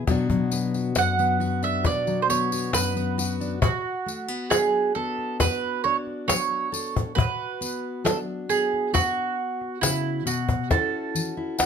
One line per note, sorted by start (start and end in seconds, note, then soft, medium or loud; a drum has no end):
0.07 0.96 B2 medium
0.07 0.28 F#3 medium
0.07 0.51 B3 medium
0.07 1.61 D4 medium
0.07 0.73 F#4 medium
0.07 cajon bass medium
0.07 cajon slap soft
0.07 tambourine soft
0.30 2.06 F#3 medium
0.30 cajon bass medium
0.52 1.18 B3 soft
0.52 cajon slap soft
0.52 tambourine medium
0.74 1.39 F#4 medium
0.74 cajon slap soft
0.74 tambourine soft
0.95 1.85 F#2 medium
0.95 1.63 F#5 medium
0.95 cajon slap medium
0.95 tambourine medium
1.19 2.29 B3 medium
1.19 tambourine soft
1.40 1.84 F#4 medium
1.40 cajon slap soft
1.40 tambourine soft
1.62 3.39 D4 medium
1.62 1.84 E5 medium
1.62 tambourine soft
1.84 2.73 B2 medium
1.84 2.51 F#4 medium
1.84 2.22 D5 medium
1.84 cajon bass medium
1.84 cajon slap soft
1.84 tambourine soft
2.07 3.57 F#3 medium
2.07 tambourine soft
2.22 2.29 C5 medium
2.29 2.95 B3 medium
2.29 2.74 C#5 medium
2.29 cajon slap soft
2.29 tambourine medium
2.52 3.17 F#4 medium
2.52 tambourine medium
2.73 3.62 F#2 medium
2.73 3.59 B4 medium
2.73 cajon slap medium
2.73 tambourine medium
2.96 3.57 B3 medium
2.96 tambourine soft
3.18 3.62 F#4 medium
3.18 cajon slap soft
3.18 tambourine medium
3.40 3.57 D4 medium
3.40 tambourine soft
3.62 4.42 B2 medium
3.62 4.50 F#4 medium
3.62 5.40 F#4 medium
3.62 cajon bass loud
4.06 4.28 A3 soft
4.06 cajon slap soft
4.06 tambourine medium
4.28 4.95 B3 soft
4.50 5.30 F#3 medium
4.50 5.83 D4 medium
4.50 4.92 G#4 medium
4.50 cajon slap medium
4.50 tambourine medium
4.95 7.12 B3 medium
4.95 5.36 A4 medium
4.95 cajon slap soft
5.18 cajon slap soft
5.40 6.19 F#2 medium
5.40 6.72 F#4 medium
5.40 5.83 B4 loud
5.40 cajon bass medium
5.40 cajon slap soft
5.40 tambourine medium
5.84 7.12 D4 medium
5.84 5.96 C#5 medium
6.07 cajon slap soft
6.28 7.08 F#3 medium
6.28 7.15 C#5 loud
6.28 cajon slap medium
6.28 tambourine medium
6.72 7.11 A4 medium
6.72 tambourine medium
6.96 cajon bass medium
7.15 7.96 B2 medium
7.15 8.92 F#4 medium
7.15 8.05 B4 medium
7.15 cajon bass medium
7.61 8.48 B3 medium
7.61 cajon slap soft
7.61 tambourine medium
8.04 8.84 F#3 medium
8.04 9.38 D4 medium
8.04 8.17 A4 medium
8.04 cajon slap medium
8.04 tambourine medium
8.49 10.65 B3 medium
8.49 8.93 G#4 medium
8.49 cajon slap soft
8.49 tambourine medium
8.74 cajon slap soft
8.93 9.73 F#2 medium
8.93 10.71 F#4 medium
8.93 9.81 F#4 medium
8.93 cajon bass medium
8.93 cajon slap soft
8.93 tambourine medium
9.61 cajon slap soft
9.81 10.25 C#3 medium
9.81 10.23 E4 medium
9.81 cajon slap medium
9.81 tambourine loud
10.25 10.70 B2 medium
10.25 10.68 F#4 medium
10.25 tambourine medium
10.49 cajon bass medium
10.70 11.50 A2 medium
10.70 11.59 C#4 medium
10.70 11.37 E4 medium
10.70 11.66 F#4 medium
10.70 11.66 A4 medium
10.70 cajon bass medium
10.70 cajon slap soft
11.15 11.66 E3 medium
11.15 cajon slap soft
11.15 tambourine medium
11.37 11.66 E4 medium
11.58 11.66 A2 medium
11.58 11.66 C#4 medium
11.58 11.66 F#5 medium
11.58 cajon slap medium
11.58 tambourine medium